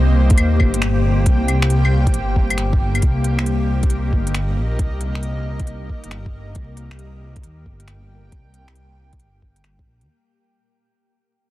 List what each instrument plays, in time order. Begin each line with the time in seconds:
Already playing: detuned saw bass C2, ambient pad A#3 G4 C5 G5
0.30 kick, closed hi-hat
0.38 detuned saw bass D#2, closed hi-hat, claves
0.60 detuned saw bass G1, kick, claves
0.74 closed hi-hat
0.82 finger snap, closed hi-hat
1.26 detuned saw bass C2, kick, closed hi-hat
1.48 closed hi-hat, claves
1.62 finger snap
1.70 closed hi-hat
1.85 claves
2.07 kick, closed hi-hat
2.14 detuned saw bass G1, closed hi-hat
2.36 kick
2.50 closed hi-hat, claves
2.58 finger snap, closed hi-hat
2.73 kick
2.95 closed hi-hat, claves
3.02 detuned saw bass C2, ambient pad A#4 D#5, kick, closed hi-hat
3.24 closed hi-hat
3.39 finger snap
3.46 closed hi-hat
3.83 kick, closed hi-hat
3.90 closed hi-hat
4.13 detuned saw bass G1, kick
4.27 closed hi-hat
4.35 finger snap, closed hi-hat
4.57 detuned saw bass A#1
4.79 detuned saw bass C2, kick, closed hi-hat
5.01 closed hi-hat
5.15 finger snap
5.23 closed hi-hat
5.60 kick, closed hi-hat
5.67 closed hi-hat
5.89 kick
6.04 detuned saw bass G1, closed hi-hat
6.11 finger snap, closed hi-hat
6.26 kick
6.35 detuned saw bass G1
6.55 detuned saw bass C2, ambient pad G5, kick, closed hi-hat
6.77 closed hi-hat
6.91 finger snap
6.99 closed hi-hat
7.36 kick, closed hi-hat
7.44 detuned saw bass D#2, closed hi-hat
7.66 detuned saw bass G1, kick
7.80 closed hi-hat
7.88 finger snap, closed hi-hat
8.32 detuned saw bass C2, kick, closed hi-hat
8.54 closed hi-hat
8.68 finger snap
8.75 closed hi-hat
9.13 kick, closed hi-hat
9.20 detuned saw bass G1, closed hi-hat
9.42 kick
9.56 closed hi-hat
9.64 finger snap, closed hi-hat
9.79 kick
9.86 detuned saw bass A#1
10.01 detuned saw bass D#2, closed hi-hat